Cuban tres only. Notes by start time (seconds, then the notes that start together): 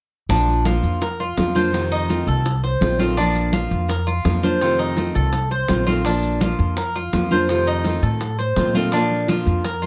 0.29 D4
0.66 F4
1.02 A#4
1.20 F4
1.56 C5
1.92 D#4
2.28 A4
2.64 C5
2.99 F4
3.17 D4
3.53 F4
3.89 A#4
4.07 F4
4.43 C5
4.79 D#4
5.15 A4
5.51 C5
5.87 F4
6.05 D4
6.41 F4
6.77 A#4
6.96 F4
7.32 C5
7.67 D#4
8.03 A4
8.39 C5
8.75 F4
8.93 D4
9.29 F4
9.65 A#4
9.82 F4